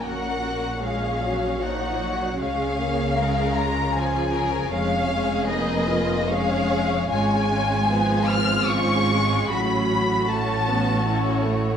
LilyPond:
<<
  \new Staff \with { instrumentName = "Violin section" } { \time 3/4 \key cis \mixolydian \tempo 4 = 76 fis''4 eis''4 fis''4 | eis''4. ais''8 gis''4 | eis''4 dis''4 eis''4 | \key fis \minor gis''4. eis'''8 cis'''4 |
b''4 a''4. r8 | }
  \new Staff \with { instrumentName = "Violin section" } { \time 3/4 \key cis \mixolydian << { ais'4 cis''2 | cis''4 ais'4 gis'4 | cis''4 b'4 cis''4 | \key fis \minor cis''4 gis'4 gis'4 |
fis'4 cis''4 cis''4 | } \\ { fis'8 fis'8 gis'4 fis'4 | gis'4 gis'8 eis'8 eis'8 ais'8 | gis'2 gis'4 | eis'8 eis'2~ eis'8 |
fis'8 fis'2~ fis'8 | } >> }
  \new Staff \with { instrumentName = "Viola section" } { \time 3/4 \key cis \mixolydian << { cis'4 cis'4 dis'4 | cis'2. | cis'4 dis'8 eis'8 cis'4 | \key fis \minor cis'4 b8 b8 cis'4 |
cis'4 cis'4 e'4 | } \\ { ais4 gis8 fis8 eis8 fis8 | gis8 ais8 gis4 eis4 | gis8 gis8 ais4 gis4 | gis4 eis4 eis8 gis8 |
fis4 a8 b8 cis'8 a8 | } >> }
  \new Staff \with { instrumentName = "Cello section" } { \clef bass \time 3/4 \key cis \mixolydian ais,2. | cis2. | eis,2. | \key fis \minor gis,2. |
a,2. | }
  \new Staff \with { instrumentName = "Double bass section" } { \clef bass \time 3/4 \key cis \mixolydian ais,,2. | cis,2. | eis,,2. | \key fis \minor gis,,2. |
a,,2. | }
>>